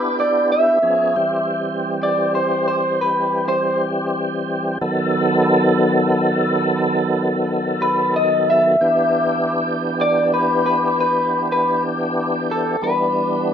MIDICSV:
0, 0, Header, 1, 3, 480
1, 0, Start_track
1, 0, Key_signature, 1, "minor"
1, 0, Tempo, 665188
1, 597, Time_signature, 12, 3, 24, 8
1, 9768, End_track
2, 0, Start_track
2, 0, Title_t, "Clean electric guitar"
2, 0, Program_c, 0, 27
2, 0, Note_on_c, 0, 71, 92
2, 117, Note_off_c, 0, 71, 0
2, 143, Note_on_c, 0, 74, 84
2, 363, Note_off_c, 0, 74, 0
2, 376, Note_on_c, 0, 76, 83
2, 1417, Note_off_c, 0, 76, 0
2, 1466, Note_on_c, 0, 74, 67
2, 1684, Note_off_c, 0, 74, 0
2, 1696, Note_on_c, 0, 72, 77
2, 1919, Note_off_c, 0, 72, 0
2, 1932, Note_on_c, 0, 72, 81
2, 2157, Note_off_c, 0, 72, 0
2, 2174, Note_on_c, 0, 71, 84
2, 2511, Note_off_c, 0, 71, 0
2, 2514, Note_on_c, 0, 72, 113
2, 2748, Note_off_c, 0, 72, 0
2, 5642, Note_on_c, 0, 71, 90
2, 5872, Note_off_c, 0, 71, 0
2, 5890, Note_on_c, 0, 75, 95
2, 6116, Note_off_c, 0, 75, 0
2, 6133, Note_on_c, 0, 76, 97
2, 7177, Note_off_c, 0, 76, 0
2, 7224, Note_on_c, 0, 74, 89
2, 7445, Note_off_c, 0, 74, 0
2, 7459, Note_on_c, 0, 71, 73
2, 7682, Note_off_c, 0, 71, 0
2, 7692, Note_on_c, 0, 71, 83
2, 7919, Note_off_c, 0, 71, 0
2, 7941, Note_on_c, 0, 71, 94
2, 8280, Note_off_c, 0, 71, 0
2, 8314, Note_on_c, 0, 71, 95
2, 8530, Note_off_c, 0, 71, 0
2, 9030, Note_on_c, 0, 69, 87
2, 9249, Note_off_c, 0, 69, 0
2, 9262, Note_on_c, 0, 71, 92
2, 9768, Note_off_c, 0, 71, 0
2, 9768, End_track
3, 0, Start_track
3, 0, Title_t, "Tonewheel organ"
3, 0, Program_c, 1, 16
3, 0, Note_on_c, 1, 59, 65
3, 0, Note_on_c, 1, 62, 63
3, 0, Note_on_c, 1, 64, 67
3, 0, Note_on_c, 1, 67, 73
3, 568, Note_off_c, 1, 59, 0
3, 568, Note_off_c, 1, 62, 0
3, 568, Note_off_c, 1, 67, 0
3, 569, Note_off_c, 1, 64, 0
3, 592, Note_on_c, 1, 61, 56
3, 594, Note_on_c, 1, 59, 62
3, 598, Note_on_c, 1, 68, 61
3, 599, Note_on_c, 1, 53, 62
3, 834, Note_off_c, 1, 61, 0
3, 835, Note_off_c, 1, 59, 0
3, 837, Note_off_c, 1, 68, 0
3, 837, Note_on_c, 1, 52, 64
3, 837, Note_on_c, 1, 55, 68
3, 838, Note_off_c, 1, 53, 0
3, 839, Note_on_c, 1, 60, 64
3, 839, Note_on_c, 1, 67, 57
3, 3450, Note_off_c, 1, 52, 0
3, 3450, Note_off_c, 1, 55, 0
3, 3451, Note_off_c, 1, 60, 0
3, 3451, Note_off_c, 1, 67, 0
3, 3473, Note_on_c, 1, 59, 65
3, 3473, Note_on_c, 1, 69, 70
3, 3474, Note_on_c, 1, 51, 70
3, 3474, Note_on_c, 1, 54, 71
3, 6327, Note_off_c, 1, 51, 0
3, 6327, Note_off_c, 1, 54, 0
3, 6327, Note_off_c, 1, 59, 0
3, 6327, Note_off_c, 1, 69, 0
3, 6355, Note_on_c, 1, 59, 65
3, 6356, Note_on_c, 1, 67, 75
3, 6360, Note_on_c, 1, 62, 73
3, 6361, Note_on_c, 1, 52, 73
3, 9211, Note_off_c, 1, 59, 0
3, 9212, Note_off_c, 1, 67, 0
3, 9214, Note_off_c, 1, 52, 0
3, 9214, Note_off_c, 1, 62, 0
3, 9248, Note_on_c, 1, 62, 69
3, 9252, Note_on_c, 1, 55, 71
3, 9253, Note_on_c, 1, 59, 68
3, 9256, Note_on_c, 1, 52, 76
3, 9768, Note_off_c, 1, 52, 0
3, 9768, Note_off_c, 1, 55, 0
3, 9768, Note_off_c, 1, 59, 0
3, 9768, Note_off_c, 1, 62, 0
3, 9768, End_track
0, 0, End_of_file